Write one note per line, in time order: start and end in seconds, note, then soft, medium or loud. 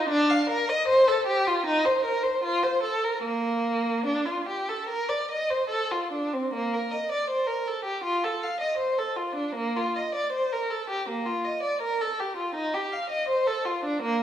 0.00 0.11 D#4 medium
0.09 0.31 D4 medium
0.30 0.51 F5 medium
0.49 0.70 A#4 medium
0.69 0.89 D#5 medium
0.88 1.08 C5 medium
1.08 1.28 A4 medium
1.27 1.47 G4 medium
1.47 1.67 F4 medium
1.66 1.85 D#4 medium
1.85 2.05 C5 medium
2.05 2.24 A#4 medium
2.23 2.43 C5 medium
2.44 2.63 F4 medium
2.63 2.84 C5 medium
2.83 3.04 A4 medium
3.04 3.25 A#4 medium
3.23 4.05 A#3 medium
4.06 4.27 D4 medium
4.25 4.47 F4 medium
4.48 4.68 G4 medium
4.69 4.90 A4 medium
4.89 5.09 A#4 medium
5.09 5.30 D5 medium
5.31 5.50 D#5 medium
5.50 5.70 C5 medium
5.69 5.90 A4 medium
5.91 6.11 F4 medium
6.12 6.31 D4 soft
6.33 6.52 C4 soft
6.54 6.71 A#3 medium
6.74 6.91 A#4 soft
6.91 7.09 D#5 medium
7.12 7.29 D5 medium
7.30 7.47 C5 medium
7.47 7.65 A#4 medium
7.67 7.85 A4 soft
7.85 8.02 G4 medium
8.04 8.21 F4 medium
8.24 8.41 A4 medium
8.43 8.60 F5 medium
8.61 8.78 D#5 soft
8.78 8.96 C5 medium
8.98 9.16 A4 medium
9.16 9.35 F4 soft
9.35 9.55 D4 soft
9.55 9.75 A#3 medium
9.76 9.95 F4 medium
9.96 10.15 D#5 soft
10.15 10.33 D5 medium
10.32 10.51 C5 medium
10.52 10.71 A#4 medium
10.70 10.89 A4 soft
10.90 11.07 G4 medium
11.09 11.26 A#3 medium
11.26 11.44 F4 soft
11.45 11.63 D#5 medium
11.63 11.81 D5 soft
11.82 12.00 A#4 medium
12.01 12.19 A4 medium
12.20 12.38 G4 medium
12.36 12.55 F4 medium
12.55 12.73 D#4 medium
12.74 12.92 G4 medium
12.92 13.11 F5 medium
13.10 13.29 D#5 medium
13.28 13.47 C5 medium
13.47 13.66 A4 medium
13.65 13.84 F4 medium
13.85 14.03 D4 medium
14.02 14.21 A#3 medium